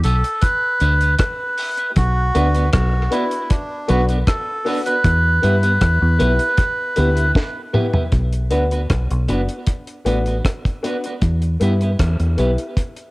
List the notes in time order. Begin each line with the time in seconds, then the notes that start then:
0.03 B1 B3 E4 G4 A4 B4, closed hi-hat
0.24 closed hi-hat
0.42 B4, kick, closed hi-hat
0.80 D2 B3 E4 G4 B4, closed hi-hat
1.01 B3 E4 G4 B4, closed hi-hat
1.19 B4, kick, cross-stick, closed hi-hat
1.57 B3 E4 G4 B4, open hi-hat
1.77 B3 E4 G4 B4, closed hi-hat
1.96 B1 F#4, kick, closed hi-hat
2.35 D2 B3 D4 F#4 B4, closed hi-hat
2.54 B3 D4 F#4 B4, closed hi-hat
2.73 B1 F#4, kick, cross-stick, closed hi-hat
3.11 B3 D4 E4 F#4 B4, closed hi-hat
3.31 closed hi-hat
3.50 D4, kick, closed hi-hat
3.88 B1 B3 D4 F#4 B4, closed hi-hat
4.09 B3 D4 F#4 B4, closed hi-hat
4.27 A4, kick, cross-stick, closed hi-hat
4.65 B3 D4 F#4 B4, open hi-hat
4.86 B3 D4 F#4 B4, closed hi-hat
5.04 E2, kick, closed hi-hat
5.42 G2 B3 E4 G4 B4, closed hi-hat
5.63 B3 E4 G4 B4, closed hi-hat
5.81 E2, kick, cross-stick, closed hi-hat
6.02 E2
6.19 B1 B3 E4 G4 B4, closed hi-hat
6.39 closed hi-hat
6.57 kick, closed hi-hat
6.96 D2 B3 E4 G4 B4, closed hi-hat
7.16 B3 E4 G4 B4, closed hi-hat
7.35 kick, snare
7.73 B3 E4 G4 B4, mid tom
7.93 B3 E4 G4 B4, floor tom
8.12 B1, kick, closed hi-hat
8.33 closed hi-hat
8.50 D2 B3 D4 F#4 B4, closed hi-hat
8.71 B3 D4 F#4 B4, closed hi-hat
8.90 B1, kick, cross-stick, closed hi-hat
9.11 B1, closed hi-hat
9.28 F#1 B3 D4 F#4 B4, closed hi-hat
9.48 F#4 B4, closed hi-hat
9.66 kick, closed hi-hat
9.87 closed hi-hat
10.05 A1 B3 D4 F#4 B4, closed hi-hat
10.26 B3 D4 F#4 B4, closed hi-hat
10.45 kick, cross-stick, closed hi-hat
10.65 kick, closed hi-hat
10.83 B3 D4 F#4 B4, closed hi-hat
11.04 B3 D4 F#4 B4, closed hi-hat
11.22 E2, kick, closed hi-hat
11.42 closed hi-hat
11.60 G2 B3 E4 G4 B4, closed hi-hat
11.81 B3 E4 G4 B4, closed hi-hat
11.99 E2, kick, cross-stick, closed hi-hat
12.20 E2, closed hi-hat
12.37 B1 B3 E4 G4 B4, closed hi-hat
12.58 G4 B4, closed hi-hat
12.77 kick, closed hi-hat
12.96 closed hi-hat